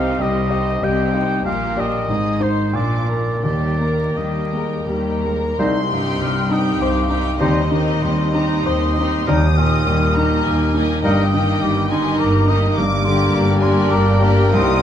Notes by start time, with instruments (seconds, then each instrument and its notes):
Already playing: double bass section C2, grand piano C2 G4 D#5, cello section C3, viola section D#4, violin section C5 G5, oboe F5
0.19 double bass section C2, cello section C3, grand piano G3 G4 D#5, viola section C4, violin section G4 D#5, oboe D#5
0.50 viola section D#4, grand piano G4 D#5, violin section C5 G5
0.81 double bass section C2, cello section C3, grand piano G3 G4 D#5, viola section C4, violin section G4 D#5, oboe G5
1.13 viola section D#4, grand piano G4 D#5, violin section C5 G5
1.45 double bass section A#1, cello section A#2, grand piano A#2, viola section A#3, violin section G4 A#5, oboe F5
1.75 viola section D4, grand piano G4 D5, violin section A#4 G5
1.80 oboe D#5
2.08 double bass section G#1, cello section G#2, grand piano G#2, viola section C4, violin section G#4 D#6
2.40 grand piano D#4 C5, viola section D#4, violin section C5 C6, oboe C5
2.72 double bass section A#1, grand piano A#2, cello section A#2, viola section D4, violin section F4 D6, oboe D5
3.07 viola section A#3, grand piano A#3 A#4, violin section D4 A#5
3.42 double bass section D#2, grand piano D#2, cello section D#3, viola section G3, violin section G4 G5, oboe D5
3.78 viola section A#3, grand piano A#3 A#4, violin section A#4 A#5
4.14 double bass section D#2, cello section D#3, grand piano G3, viola section A#3, violin section G4 G5, oboe D#5
4.18 grand piano A#3 A#4
4.49 viola section G#3, grand piano A#3, violin section A#4 G5 A#5
4.54 grand piano A#4
4.85 double bass section D#2, cello section D#3, viola section G3, grand piano G3 A#3 A#4, violin section G4 G5 A#5
5.22 viola section G#3, grand piano A#3 A#4, violin section A#4 A#5
5.58 cello section C2, grand piano C2, double bass section C2, bassoon G3, french horn section G3 D#4, clarinet D#4, oboe C5, violin section C6
5.89 grand piano G2, viola section C4 D#4, violin section G4 G5
6.20 cello section C2, double bass section C2, grand piano G3, flute F6
6.50 viola section C4 D#4, grand piano D#4, violin section G4 G5, flute D#6
6.79 double bass section C2, cello section C2, grand piano C5, violin section F5, flute D6
7.08 viola section C4 D#4, grand piano D#4, violin section G4 G5
7.38 double bass section D#2, cello section D#2, grand piano D#2, french horn section G3 C4, bassoon G3, viola section C4 D#4, clarinet D#4, violin section G4 D#5, oboe C5, flute C6
7.69 grand piano D#3, viola section C4 D#4, violin section G4 D#5, flute A#5
8.02 cello section D#2, double bass section D#2, grand piano G3, flute C6
8.33 viola section C4 D#4, grand piano D#4, violin section G4 D#5 A#5
8.65 cello section D#2, double bass section D#2, grand piano C5, violin section C6, flute D#6
8.95 viola section C4 D#4, grand piano D#4, violin section G4 D#5
9.27 cello section D#2, double bass section D#2, grand piano D#2, bassoon G3, french horn section G3 D#4, clarinet D#4, oboe A#4, violin section D#6, flute G6
9.56 grand piano A#2, viola section A#3 D#4, violin section G4 D#5, flute F6
9.86 cello section D#2, double bass section D#2, grand piano G3
10.14 grand piano D#4, viola section D#4, violin section G4 D#5 A#5
10.18 viola section A#3
10.45 cello section D#2, double bass section D#2, grand piano A#4, violin section G#5
10.74 viola section A#3 D#4, grand piano D#4, violin section G4 D#5
11.01 double bass section G1, cello section G2, grand piano G2, bassoon G3, french horn section A#3 D#4, viola section A#3 D#4, clarinet D#4, violin section G4 D#5 G5, oboe A#4, flute D#6
11.32 grand piano D#3, viola section A#3 D#4, violin section G4 D#5
11.61 double bass section G1, cello section G2, grand piano G3, flute D6
11.89 viola section A#3 D#4, grand piano D#4, violin section G4 D#5 G#5, flute C6
12.19 double bass section G1, cello section G2, grand piano A#4, violin section A#5, flute D6
12.48 viola section A#3 D#4, grand piano D#4, violin section G4 D#5, flute D#6
12.75 double bass section G1, cello section G2, grand piano G2, bassoon G3, french horn section A#3 G4, clarinet D4, oboe A#4, violin section D6, flute D6
13.05 grand piano D3, viola section A#3 G4, violin section G4 D5, flute C6
13.34 double bass section G1, cello section G2, grand piano G3, flute A#5
13.60 viola section A#3 G4, grand piano D4, violin section G4 D5 G#5, flute C6
13.89 double bass section G1, cello section G2, french horn section A#3 G4, grand piano A#4, violin section G5, flute D6
14.21 viola section A#3 G4, grand piano D4, violin section G4 D5, flute A#5
14.51 grand piano C2, double bass section C2, cello section C3, viola section A#3 D#4, french horn section A#3 G4, clarinet C4, violin section G4 C5 D#6, flute C6